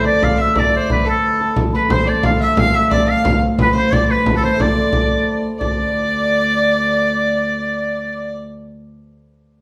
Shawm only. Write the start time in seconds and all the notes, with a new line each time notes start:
0.07 D5
0.24 F5
0.42 E5
0.59 D5
0.77 C5
0.93 B4
1.09 A4
1.77 B4
1.93 C5
2.09 D5
2.26 F5
2.43 E5
2.60 F5
2.76 E5
2.94 D5
3.11 F5
3.62 B4
3.78 C5
3.94 D5
4.11 B4
4.37 A4
4.45 C5
4.62 D5
5.61 D5